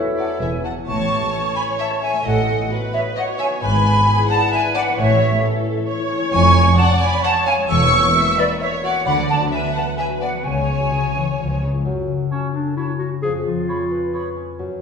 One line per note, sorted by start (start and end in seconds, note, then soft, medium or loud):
0.00 0.40 E2 soft
0.00 0.64 E3 medium
0.00 0.43 A3 soft
0.00 0.43 C#4 soft
0.00 0.29 E4 medium
0.00 0.63 E4 soft
0.00 0.63 E4 medium
0.00 0.17 A4 soft
0.00 0.41 A4 medium
0.00 0.16 C#5 soft
0.00 0.39 C#5 soft
0.00 0.17 E5 soft
0.18 0.41 A4 medium
0.18 0.43 A4 soft
0.18 0.39 D5 medium
0.18 0.26 D5 soft
0.18 0.25 F#5 medium
0.40 0.78 E1 medium
0.40 0.78 E2 medium
0.40 0.89 E2 soft
0.40 0.76 E4 soft
0.40 0.48 G#4 soft
0.40 0.52 G#4 soft
0.40 0.76 B4 medium
0.40 0.65 B4 soft
0.40 0.48 E5 soft
0.40 0.50 E5 medium
0.40 0.64 G#5 medium
0.64 0.89 B3 soft
0.64 0.72 F#4 soft
0.64 0.90 B4 soft
0.64 0.72 F#5 medium
0.64 0.73 F#5 medium
0.64 0.70 A5 medium
0.87 1.26 A1 medium
0.87 2.23 A2 medium
0.87 1.26 A2 medium
0.87 2.21 C#5 medium
0.87 1.54 A5 medium
0.87 1.55 A5 medium
0.87 1.55 C#6 medium
0.99 2.26 E3 soft
1.10 2.12 A3 medium
1.22 1.44 C#4 medium
1.33 1.89 A4 medium
1.45 2.00 C#4 medium
1.55 1.78 C#5 medium
1.55 1.63 G#5 medium
1.55 1.64 G#5 medium
1.55 1.62 B5 medium
1.68 3.63 A5 medium
1.78 2.26 C#5 medium
1.78 1.86 E5 medium
1.78 1.87 E5 medium
1.78 2.02 A5 medium
1.90 3.63 A4 medium
2.01 2.26 C#4 medium
2.01 2.10 E5 medium
2.01 2.24 E5 medium
2.01 2.24 G#5 medium
2.13 2.34 A3 medium
2.24 2.63 A1 medium
2.24 3.63 A2 medium
2.24 2.63 A2 medium
2.24 2.70 A4 medium
2.24 2.70 D#5 medium
2.24 2.70 F#5 medium
2.36 3.63 A3 medium
2.47 3.49 B3 medium
2.59 3.38 D#4 medium
2.70 3.27 F#4 medium
2.70 3.15 B4 medium
2.82 4.16 B4 medium
2.93 3.01 C#5 medium
2.93 3.02 C#5 medium
2.93 3.15 D#5 medium
2.93 3.00 E5 medium
3.05 3.64 F#5 medium
3.16 3.62 C#5 medium
3.16 3.24 D#5 medium
3.16 3.64 D#5 medium
3.16 3.23 F#5 medium
3.28 3.63 F#4 medium
3.38 3.63 D#4 medium
3.38 3.46 E5 medium
3.38 3.47 E5 medium
3.38 3.46 G#5 medium
3.50 3.83 B3 medium
3.61 4.00 G#1 medium
3.61 4.99 G#2 medium
3.61 3.99 G#2 medium
3.61 4.07 B4 medium
3.61 4.28 G#5 medium
3.61 4.29 B5 loud
3.73 5.00 G#3 medium
3.84 4.86 B3 medium
3.95 4.74 D4 medium
4.07 4.63 E4 medium
4.07 4.52 G#4 medium
4.18 4.99 B4 medium
4.29 4.51 D5 medium
4.29 4.52 F#5 medium
4.29 4.52 A5 loud
4.41 5.76 E5 medium
4.52 4.97 B4 medium
4.52 5.00 D5 medium
4.52 4.60 E5 medium
4.52 4.61 E5 loud
4.52 4.75 G#5 loud
4.64 5.42 E4 medium
4.74 5.00 D4 medium
4.74 4.82 D5 loud
4.74 4.83 D5 medium
4.74 4.97 F#5 loud
4.87 5.00 B3 medium
4.97 5.36 A1 medium
4.97 5.36 A2 medium
4.97 6.35 A2 medium
4.97 5.42 C#5 medium
4.97 5.43 C#5 medium
4.97 5.42 E5 medium
5.09 6.35 E3 medium
5.21 6.20 A3 medium
5.32 6.09 C#4 medium
5.43 5.98 E4 medium
5.43 5.88 A4 medium
5.55 6.35 A4 medium
5.66 5.87 C#5 medium
5.77 6.35 E5 medium
5.88 6.88 C#5 medium
5.88 6.76 C#5 medium
5.99 6.35 E4 medium
6.10 6.54 C#4 medium
6.21 6.35 A3 medium
6.32 6.71 F1 medium
6.32 6.71 F2 loud
6.32 7.71 F3 medium
6.32 6.75 G#5 loud
6.32 6.75 C#6 loud
6.55 6.77 C#4 medium
6.67 7.33 G#4 medium
6.77 7.45 C#4 medium
6.77 7.22 D5 medium
6.77 7.00 F#5 loud
6.77 6.84 A5 medium
6.89 7.11 C#5 medium
7.01 7.22 G#5 medium
7.01 7.23 G#5 loud
7.01 7.09 G#5 medium
7.01 7.23 B5 loud
7.12 8.25 C#5 medium
7.23 7.68 C#5 medium
7.23 7.31 F#5 loud
7.23 7.32 F#5 medium
7.23 7.71 G#5 medium
7.23 7.46 A5 loud
7.35 7.71 G#4 medium
7.46 7.91 C#4 medium
7.46 7.54 F5 medium
7.46 7.55 F5 medium
7.46 7.53 G#5 loud
7.58 7.71 G#3 medium
7.69 8.07 E1 medium
7.69 8.07 E2 medium
7.69 9.08 E3 medium
7.69 8.14 C#5 medium
7.69 8.36 C#6 loud
7.69 8.37 E6 loud
7.81 9.08 A#3 medium
7.92 8.93 C#4 medium
8.03 8.82 F#4 medium
8.15 8.70 A#4 medium
8.15 8.59 E5 medium
8.26 9.08 C#5 medium
8.37 8.60 B4 medium
8.37 8.47 B4 medium
8.37 8.44 D5 medium
8.37 8.59 F#5 medium
8.49 9.08 A#5 medium
8.61 9.05 C#5 medium
8.61 8.69 C#5 medium
8.61 8.84 C#5 medium
8.61 8.67 E5 loud
8.61 9.74 F#5 medium
8.71 9.08 A#4 medium
8.83 9.39 F#4 medium
8.83 8.92 D5 medium
8.83 9.06 D5 medium
8.83 9.05 F#5 loud
8.94 9.08 C#4 medium
9.05 9.44 D2 medium
9.05 10.46 D3 medium
9.05 9.44 D3 medium
9.05 9.51 D5 medium
9.05 9.14 F#5 medium
9.05 9.28 F#5 loud
9.05 9.11 B5 loud
9.17 10.32 F#3 soft
9.28 9.51 B3 medium
9.28 9.36 F#5 medium
9.28 9.51 F#5 medium
9.28 9.35 A5 loud
9.40 10.08 F#4 medium
9.52 10.20 B3 medium
9.52 9.97 B4 medium
9.52 9.60 E5 medium
9.52 9.74 E5 medium
9.52 9.58 G#5 medium
9.63 9.85 B4 medium
9.74 9.98 F#5 medium
9.74 9.97 F#5 medium
9.74 9.84 F#5 medium
9.74 9.80 A5 medium
9.86 10.46 B4 medium
9.98 10.44 B4 medium
9.98 10.06 E5 medium
9.98 11.14 F#5 medium
9.98 10.04 G#5 medium
10.09 10.78 F#4 soft
10.21 10.47 B3 soft
10.21 10.29 D5 medium
10.21 10.44 F#5 medium
10.33 11.41 F#3 soft
10.44 10.84 C#2 medium
10.44 11.37 C#3 medium
10.44 10.84 C#3 medium
10.44 11.59 C#5 medium
10.44 11.62 C#5 medium
10.44 11.60 C#5 medium
10.44 11.62 G#5 medium
10.56 11.49 G#3 soft
10.68 11.61 C#4 medium
10.80 11.40 F#4 soft
10.91 11.14 C#3 medium
10.91 11.87 G#4 soft
11.03 14.82 C#5 soft
11.15 11.23 E3 medium
11.15 11.40 F#5 soft
11.38 11.78 C#2 medium
11.38 11.87 C#3 medium
11.38 11.62 F3 medium
11.50 11.87 G#3 soft
11.62 11.70 C#3 medium
11.62 12.29 C#4 medium
11.73 11.87 F4 soft
11.85 13.24 F#2 medium
11.85 12.24 F#3 medium
12.07 13.24 C#3 soft
12.31 12.99 C#4 soft
12.31 12.52 C#4 medium
12.31 12.48 C#5 soft
12.31 12.40 A5 soft
12.54 12.76 D4 medium
12.54 13.25 A4 soft
12.77 12.87 E4 medium
12.77 13.25 F#4 soft
12.77 12.93 C#5 soft
12.77 12.86 A5 soft
12.99 13.67 C#4 soft
12.99 13.09 F#4 medium
13.23 14.61 F2 soft
13.23 13.61 F3 medium
13.23 13.33 G#4 medium
13.46 14.61 F3 soft
13.46 14.35 F4 medium
13.68 14.35 C#4 soft
13.68 13.85 C#5 soft
13.68 13.77 B5 soft
13.91 14.61 B4 soft
14.13 14.61 G#4 soft
14.13 14.30 C#5 soft
14.13 14.23 B5 soft
14.36 14.82 C#4 soft
14.59 14.82 F#2 soft
14.59 14.82 F#3 medium